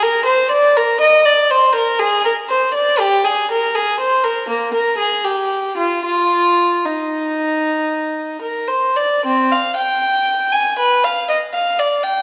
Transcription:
X:1
M:12/8
L:1/8
Q:3/8=79
K:Eb
V:1 name="Violin"
B c d B e d c B A B c d | G A B A c B B, B A G2 F | F3 E6 B c d | [K:Gphr] C f g3 a =B f e f d g |]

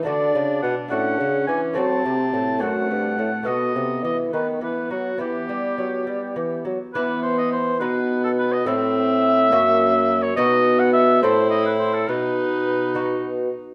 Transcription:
X:1
M:6/8
L:1/16
Q:3/8=70
K:Em
V:1 name="Oboe"
d4 f2 f4 ^g2 | a6 f6 | ^d4 d2 B2 B2 F2 | G8- G2 z2 |
B2 c ^d c2 B3 A B d | e8- e3 ^c | ^d3 f e2 c2 d B c A | B8- B2 z2 |]
V:2 name="Viola"
D6 ^C6 | C6 A,6 | B,6 B,6 | B,8- B,2 z2 |
B,6 B,6 | C6 ^A,6 | B,6 E6 | ^D8- D2 z2 |]
V:3 name="Lute"
[A,DF]6 [A,DF]6 | [A,CF]6 [A,CF]6 | [A,B,F]12 | [B,E]12 |
[B,E]6 [B,^D]6 | [A,CE]6 [^A,^CF]6 | [B,^DF]6 [CEA]6 | z6 [B,^DF]6 |]
V:4 name="Lute" clef=bass
D,2 ^C,2 B,,2 A,,2 C,2 E,2 | F,2 C,2 A,,2 F,,2 G,,2 A,,2 | B,,2 C,2 E,2 ^D,2 E,2 F,2 | E,2 G,2 F,2 G,2 E,2 F,2 |
E,6 B,,6 | A,,6 F,,6 | B,,6 A,,6 | B,,8- B,,2 z2 |]
V:5 name="Bassoon" clef=bass
D,2 ^C,2 B,,2 A,,2 C,2 E,2 | F,2 C,2 A,,2 F,,2 G,,2 A,,2 | B,,2 C,2 E,2 ^D,2 E,2 F,2 | E,2 G,2 F,2 G,2 E,2 F,2 |
E,6 B,,6 | A,,6 F,,6 | B,,6 A,,6 | B,,8- B,,2 z2 |]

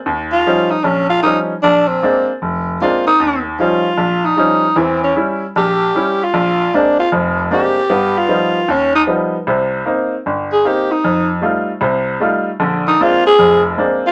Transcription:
X:1
M:4/4
L:1/8
Q:"Swing" 1/4=153
K:Bbmix
V:1 name="Tenor saxophone"
z F2 E _D F E z | D C2 z3 F E- | E z F3 E3 | C ^C z2 G3 F- |
F2 D F z2 G2- | G F3 _D ^D z2 | z4 z A G E- | E z6 z |
z E F A2 z2 F |]
V:2 name="Upright piano"
E,,2 [F,G,_DE] z B,,,2 [F,G,DE] z | B,,,2 [A,B,CD] z F,,,2 [A,B,CD] z | E,,2 [F,G,_DE] z B,,,2 [F,G,DE] z | [=E,,=E,]2 [G,^C=E] z B,,,2 [G,CE] z |
B,,,2 [A,B,CD] z [F,,,F,,]2 [A,B,CD] z | [G,,=B,]2 [F,G,B,^D] z ^D,,2 [F,G,B,D] z | [C,,C,]2 [B,CE] z G,,,2 [B,CE] z | F,,2 [G,=A,EF] z [C,,C,]2 [G,A,EF] z |
[B,,,D,]2 [A,B,CD] z [F,,,F,,]2 [A,B,CD] z |]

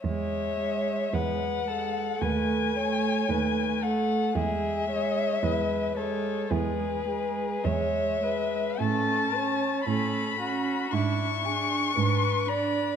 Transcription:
X:1
M:4/4
L:1/8
Q:1/4=56
K:E
V:1 name="Violin"
e2 f2 g3 f | e3 c B2 e2 | a2 b2 c'3 b |]
V:2 name="Violin"
c2 B A B c B A | G c B A G G c B | A c A F E G B =d |]
V:3 name="Viola" clef=bass
G, G, G, G, A, A, A, A, | G, G, G, G, G, G, G, G, | C C C C =D D D D |]
V:4 name="Cello" clef=bass
E,,2 E,,2 D,,2 D,,2 | E,,2 E,,2 E,,2 E,,2 | A,,2 A,,2 G,,2 G,,2 |]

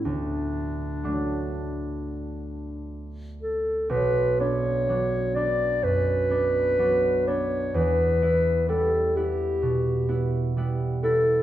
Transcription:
X:1
M:4/4
L:1/8
Q:1/4=63
K:D
V:1 name="Clarinet"
D6 z A | [K:Bm] B c2 d B3 c | B2 A G3 z A |]
V:2 name="Harp"
[D,,A,]2 [F,A,D]6 | [K:Bm] B,,, [B,D] [F,B,D] [B,D] F,, [B,D] [F,B,D] [B,D] | E,, [B,E] [G,B,E] [B,E] B,, [B,E] [G,B,E] [B,E] |]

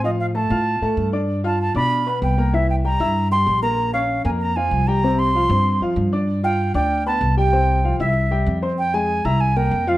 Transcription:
X:1
M:4/4
L:1/8
Q:1/4=192
K:Cphr
V:1 name="Flute"
e f =a4- a z | z =a a =b3 g2 | =e g b3 c'2 b- | b f2 a b a2 b- |
b c'4 z3 | z g2 g2 =a2 g- | g3 =e4 z | g a2 b a g2 f |]
V:2 name="Grand piano"
[F,Ff]2 [=A,=A=a] [Fff']2 [A,Aa]2 [=D=d=d']- | [=D=d=d'] [Fff']2 [Ddd']2 [=B,=B=b]2 [_B,_B_b] | [=E,=E=e]2 [G,Gg] [Ee=e']2 [G,Gg]2 [B,Bb]- | [B,Bb] [Ddd']2 [B,Bb]2 [F,Ff]2 [G,Gg] |
[C,Cc]2 [F,Ff] [Ccc']2 [F,Ff]2 [=D=d=d']- | [=D=d=d'] [Fff']2 [Ddd']2 [=B,=B=b]2 [G,Gg] | [C,Cc]2 [F,Ff] [=E=e=e']2 [G,Gg]2 [Ccc'] | z [A,Aa]2 [=E=e=e']2 [B,Bb]2 [F,Ff] |]
V:3 name="Upright bass" clef=bass
=A,,3 A,,2 A,, G,,2- | G,,3 =B,,3 C,,2- | C,,3 G,,3 B,,,2- | B,,,3 F,,3 C,,2- |
C,,3 G,,2 F,, G,,2- | G,,3 =D,,3 C,,2- | C,,3 C,,3 F,,2- | F,,3 C,,3 F,,2 |]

